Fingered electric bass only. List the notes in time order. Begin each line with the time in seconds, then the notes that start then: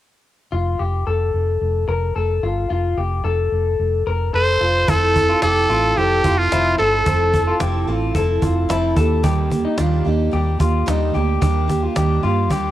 0.53 F1
0.80 F1
1.07 F1
1.34 F1
1.62 F1
1.88 F1
2.16 F1
2.43 G1
2.70 F1
2.97 F1
3.25 F1
3.52 F1
3.79 F1
4.07 F1
4.34 F1
4.61 F1
4.88 F1
5.43 F1
5.70 A1
5.97 F1
6.24 F1
6.52 F1
6.79 G1
7.06 F1
7.61 F1
7.88 A1
8.15 F1
8.42 F1
8.70 F1
8.97 D#2
9.79 D#2
10.06 D#2
10.33 D#2
10.60 D#2
10.88 D#2
11.15 D2
11.42 D#2
11.97 D#2
12.24 G2
12.50 D#2